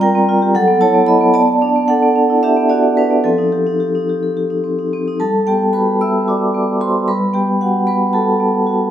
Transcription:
Already playing: G3 C4 D5 A#5
0.00 F4 A#4 G5
0.15 C4
0.29 F4
0.42 G4
0.55 F#3 A4 F#5
0.68 B3
0.81 E4 C#5 A5
0.94 B3
1.07 E4 D#5 B5
1.21 B3
1.34 B3 D5 A5
1.62 D4
1.76 B3
1.88 D4 A4 F#5
2.02 B3
2.16 D4
2.30 E4
2.43 D4 G4 E5
2.69 D4 F#4 D5
2.83 B3
2.97 D4 B4
3.11 B3
3.24 F3 C4 A4
3.38 D#4
3.52 G4
3.67 D#4
3.80 G4
3.95 D#4
4.09 G4
4.23 A4
4.37 G4
4.50 D#4
4.64 C4
4.79 D#4
4.93 C4
5.08 D#4
5.20 G3 A4 A5
5.47 B3 G4 G5
5.73 F#4 B4 B5
6.01 B3 E5 E6
6.28 F#4 D5 D6
6.55 B3
6.81 F#4 C5 C6
7.08 G3 B4 B5
7.33 B3 G4 G5
7.61 F#4 F#5
7.87 B3 B4 B5
8.13 F#4 A4 A5
8.40 B3
8.67 F#4

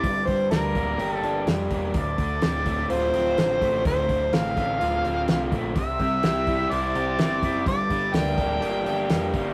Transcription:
Already playing: D5
0.04 G1 G2, kick, open hi-hat
0.26 G1 G3 C5, kick, open hi-hat
0.51 D2 D4 A#4, snare, open hi-hat
0.75 D1 A#3, kick, open hi-hat
0.99 G1 G4, open hi-hat
1.13 A4
1.23 G1 D4, open hi-hat
1.47 F2 G3, snare, open hi-hat
1.70 E1 A#3, kick, open hi-hat
1.94 D1 D2 D5, kick, open hi-hat
2.18 D2 D3, kick, open hi-hat
2.42 D1 C4, snare, open hi-hat
2.66 A3, kick, open hi-hat
2.90 D1 F4 C5, open hi-hat
3.14 D1 C4, open hi-hat
3.38 A1 D3, snare, open hi-hat
3.61 A1 A3, kick, open hi-hat
3.85 D1 D2 C5, kick, open hi-hat
4.09 D1 D3, kick, open hi-hat
4.33 A1 C4 F5, snare, open hi-hat
4.56 A1 A3, kick, open hi-hat
4.80 D1 F4, open hi-hat
5.04 D1 C4, open hi-hat
5.28 C2 D3, snare, open hi-hat
5.52 A#1 A3, kick, open hi-hat
5.76 C2 C3 E5, kick, open hi-hat
6.00 C2 G3 C4, kick, open hi-hat
6.23 C2 E4 G4, snare, open hi-hat
6.47 E4 G4, kick, open hi-hat
6.71 C2 E4 C5 D5, open hi-hat
6.95 C2 G4 C5, open hi-hat
7.18 G1 C4 E4, snare, open hi-hat
7.42 F#1 C4 E4, kick, open hi-hat
7.66 G1 G2 D5, kick, open hi-hat
7.90 G1 D3 G3, kick, open hi-hat
8.14 D2 A#3 D4 G5, snare, open hi-hat
8.37 D1 A#3 D4, kick, open hi-hat
8.62 G1 A#3 G4, open hi-hat
8.85 G1 D4 G4, open hi-hat
9.09 F2 G3 A#3, snare, open hi-hat
9.33 G1 G3 A#3, kick, open hi-hat

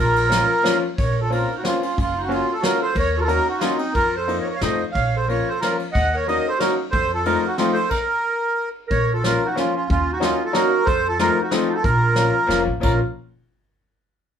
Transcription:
Already playing: A#1
0.00 F4 A#4
0.16 ride
0.29 F3 A#3 C#4 F4, snare, ride
0.63 F3 A#3 C#4 F4, snare, ride
0.98 A#1 A#4 C#5, kick, ride
1.21 F4 A4
1.30 A#3 C4 C#4 F4 A#4, ride
1.54 D#4
1.58 F#4
1.63 A#3 C4 C#4 F4, snare, ride
1.81 C#4 F4, ride
1.96 F#1 C#4, kick, ride
2.01 F4
2.17 D#4
2.22 F#4
2.27 F#3 A#3 C#4 F4
2.31 F4, ride
2.50 F4 A4
2.60 F#3 A#3 C#4 F4 F#4, snare, ride
2.64 A#4
2.80 A4 C5
2.95 D#2 A#4 C#5, kick, ride
3.17 F4 F#4 A4 A#4
3.22 F4 A4
3.27 F#3 A#3 C#4 D#4 F#4 A#4, ride
3.49 D#4 F#4
3.59 F#3 A#3 C#4 D#4 F4, snare, ride
3.77 C4 D#4, ride
3.94 F2 F4 A#4, kick, ride
4.16 A4 C5
4.27 F3 A#3 C4 D#4, ride
4.39 A#4 C#5
4.47 A#4 C#5
4.51 A#4 C#5
4.56 F5
4.61 F2 F3 A3 C4 D#4 C5 D#5, snare, ride
4.92 A#1 C#5 F5, kick, ride
5.16 A4 C5
5.28 F3 A#3 C#4 F4 A#4 C#5, ride
5.48 A4 C5
5.60 F3 A#3 C#4 F4 A#4, snare, ride
5.79 ride
5.92 D#2 D#5 F#5, kick, ride
6.14 A#4 C#5
6.26 F#3 A#3 C#4 D#4 A#4 D#5, ride
6.48 A4 C5
6.58 F#3 A#3 C#4 D#4 F#4 A#4, snare, ride
6.91 F2 A4 C5, kick, ride
7.14 F4 A4
7.25 F3 A3 C4 D#4 F4 A#4, ride
7.47 D#4 F#4
7.57 F3 A3 C4 D#4 F4, snare, ride
7.73 A4 C5, ride
7.89 A#4, kick, crash
8.88 A#1 A#4 C#5, kick, closed hi-hat
9.13 F4 A4
9.23 F3 A#3 C#4 F4 A#4, snare, closed hi-hat
9.46 D#4 F#4
9.55 F3 A#3 C#4 F4, snare, closed hi-hat
9.74 C#4 F4
9.89 D#2 C#4 F4, kick, closed hi-hat
10.12 D#4 F#4
10.20 F#3 A#3 C#4 D#4 F4, snare, closed hi-hat
10.44 F4 A4
10.53 F#3 A#3 C#4 D#4 F#4 A#4, snare, closed hi-hat
10.86 F2 A4 C5, kick, closed hi-hat
11.08 F4 A4
11.19 F3 A3 C4 D#4 F4 A#4, snare, closed hi-hat
11.41 D#4 F#4
11.51 F3 A3 C4 D#4, snare, closed hi-hat
11.55 F4
11.69 D#4 F4 A4
11.74 F#4 A4
11.79 F4 A#4
11.84 A#1 F4, kick, closed hi-hat
12.15 F3 A#3 C#4 F4, snare, closed hi-hat
12.47 F1 F3 A#3 C#4 F4, snare, closed hi-hat
12.67 A1
12.80 A#1 F3 A#3 C#4 F4 A#4, kick, crash

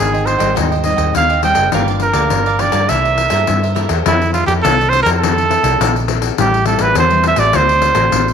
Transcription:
Already playing: C4 D#4 G#4 C5 D#5
0.00 G#1 D#3
0.12 C5 D#5 G5, pandeiro
0.26 G#4 C5 D#5 G5, pandeiro
0.39 G#1 G3 C4 D#4 C5 D#5 G5, pandeiro
0.55 D#2 G#2 G#4 C5 D#5 G5, pandeiro
0.71 C5 D#5 G5, pandeiro
0.84 G3 C4 D#4 D#5, pandeiro
0.97 D#2 C5 D#5 G5, pandeiro
1.13 D#2 D#3 F5, muted cavaquinho stroke, pandeiro
1.30 C5 D#5 G5, pandeiro
1.42 G3 C4 D#4 G#4 C5 D#5 G5, pandeiro
1.55 F#1 C5 D#5 G5, pandeiro
1.72 G1 G2 F3 A#3 D4 G4 A#4 D5 F5, pandeiro
1.88 A#4 D5 F5, pandeiro
2.00 A#4, muted cavaquinho stroke, pandeiro
2.13 D2 F3 A#3 D4 A#4 D5 F5, pandeiro
2.30 G1 D3, pandeiro
2.46 A#4 D5 F5, pandeiro
2.59 F3 A#3 D4 G4 A#4 D5 F5, pandeiro
2.72 G2 A#4 D5 F5, pandeiro
2.89 C2 C3 A#3 E4 A4 A#4 C5 E5, pandeiro
3.04 A#4 C5 E5, pandeiro
3.18 pandeiro
3.29 G2 A#3 E4 A4 A#4 C5 E5, pandeiro
3.47 G2, muted cavaquinho stroke, pandeiro
3.63 A#4 C5 E5, pandeiro
3.75 A#3 E4 A4 A#4 C5 E5, pandeiro
3.89 E2 A#4 C5 E5, pandeiro
4.06 F2 F3 C4 E4 A4, pandeiro
4.21 pandeiro
4.33 F4, pandeiro
4.46 F2 C4 E4 G4 A4, pandeiro
4.62 C2 C3 A4, pandeiro
4.81 pandeiro
4.89 C5, pandeiro
5.03 F2 C4 E4 A4 A#4, pandeiro
5.19 F3 A4
5.23 pandeiro
5.38 pandeiro
5.50 C4 E4 A4, pandeiro
5.64 C2, pandeiro
5.80 A#1 C3, pandeiro
5.96 pandeiro
6.08 C4 E4 A4, pandeiro
6.22 pandeiro
6.37 A1 A2 G3 C4 E4 G4, pandeiro
6.54 pandeiro
6.65 G3 C4 E4 A4, pandeiro
6.79 A1 B4, pandeiro
6.95 E2 E3 C5, pandeiro
7.10 G3 C4 E4, pandeiro
7.24 E5, pandeiro
7.36 A1 A3 C4 F#4 D5, pandeiro
7.53 D2 D3 C5, pandeiro
7.69 pandeiro
7.82 pandeiro
7.95 A1 A3 C4 F#4, pandeiro
8.12 A1 A2, pandeiro
8.28 pandeiro

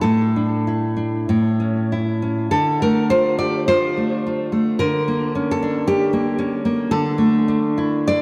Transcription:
0.01 A2 A4
0.36 D4
0.67 E4
0.96 D4
1.29 A2
1.60 C#4
1.92 E4
2.22 C#4
2.51 D3 A4
2.82 A3 A#4
3.10 F4 C5
3.39 G4 D5
3.68 F4 C5
3.97 A3
4.27 F4
4.52 A3
4.79 D3 A#4
5.08 A#3
5.35 C#4
5.51 A4
5.63 D4
5.87 C#4 G4
6.13 A#3
6.38 C#4
6.65 A#3
6.91 D3 A4
7.18 A3
7.48 D4
7.78 E4
8.07 D4 D5

